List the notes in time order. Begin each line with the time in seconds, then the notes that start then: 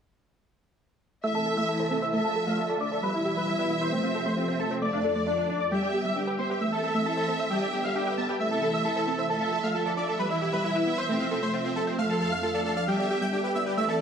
1.24 C3 E3 A3 E4 E5 E6
1.35 A4 E5 A5
1.46 A4 A5
1.57 A3 E5 E6
1.68 E4 A4 A5
1.80 A4 C5 A5
1.91 C4 A4 A5
2.02 C5 E5 E6
2.13 D3 F3 A3 F4 A4 E5 A5
2.24 A4 F5 A5
2.36 A4 A5
2.47 A3 F5 F6
2.58 F4 A4 A5
2.69 A4 D5 A5
2.80 D4 D5 E5 D6
2.92 A4 D5 A5
3.03 B2 E3 G3 E4 B4 B5
3.14 E4 E5
3.25 E4 G4 E5
3.36 G3 B4 B5
3.48 E4 E5
3.59 E4 B4 E5
3.70 B3 E4 E5
3.81 B4 C5 C6
3.92 C3 F3 A3 C4 F4 C5
4.04 C4 C5 F5
4.15 C4 A4 C5
4.26 A3 C5 C6
4.37 C4 F4 C5
4.48 C4 C5
4.60 C4 A4 A5
4.71 C4 C5
4.82 F2 D3 F3 A3 F4 D5 D6
4.93 D4 D5 F5
5.04 D4 A4 D5
5.15 A3 D5 D6
5.27 D4 F4 D5
5.38 D4 D5
5.49 D4 D5
5.60 D5 D6
5.71 D3 G3 B3 G4 E5 G5
5.83 G4 D5 G5
5.94 G4 G5
6.05 G3 E5 E6
6.16 D4 G4 G5
6.27 G4 B4 G5
6.39 B3 C5 E5 C6
6.50 G4 B4 G5
6.61 E3 A3 C4 A4 E5 E6
6.72 A4 E5 A5
6.83 A4 A5
6.95 A3 E5 E6
7.06 E4 A4 A5
7.17 A4 C5 A5
7.28 C4 A4 A5
7.39 C5 E5 E6
7.51 D3 G3 B3 G4 G5
7.62 G4 D5 G5
7.73 G4 G5
7.84 G3 F5 F6
7.95 D4 G4 G5
8.06 G4 B4 G5
8.18 B3 A5 A6
8.29 G4 B4 G5
8.40 C3 E3 A3 E4 E5 E6
8.51 A4 E5 A5
8.62 A4 A5
8.74 A3 E5 E6
8.85 E4 A4 A5
8.96 A4 C5 A5
9.07 C4 A4 A5
9.19 C5 E5 E6
9.30 D3 F3 A3 F4 A4 E5 A5
9.41 A4 F5 A5
9.52 A4 A5
9.63 A3 F5 F6
9.75 F4 A4 A5
9.86 A4 D5 A5
9.97 D4 D5 E5 D6
10.08 A4 D5 A5
10.19 B2 E3 G3 E4 B4 B5
10.30 E4 E5
10.42 E4 G4 E5
10.53 G3 B4 B5
10.64 E4 E5
10.75 E4 B4 E5
10.86 B3 E4 E5
10.98 B4 C5 C6
11.09 C3 F3 A3 C4 F4 C5
11.20 C4 C5 F5
11.31 C4 A4 C5
11.42 A3 C5 C6
11.54 C4 F4 C5
11.65 C4 C5
11.76 C4 A4 A5
11.87 C4 C5
11.98 F2 D3 A3 F5 F6
12.10 A4 F5 A5
12.21 A4 A5
12.32 A3 F5 F6
12.43 F4 A4 A5
12.54 A4 D5 A5
12.65 D4 A4 A5
12.77 D5 F5 F6
12.88 G3 B3 G4 E5 G5
12.99 G4 D5 G5
13.10 G4 G5
13.21 G3 G5 G6
13.33 D4 G4 G5
13.44 G4 B4 G5
13.55 B3 D5 E5 E6
13.66 G4 B4 G5
13.77 E3 A3 C4 A4 E5 E6
13.89 A4 E5 A5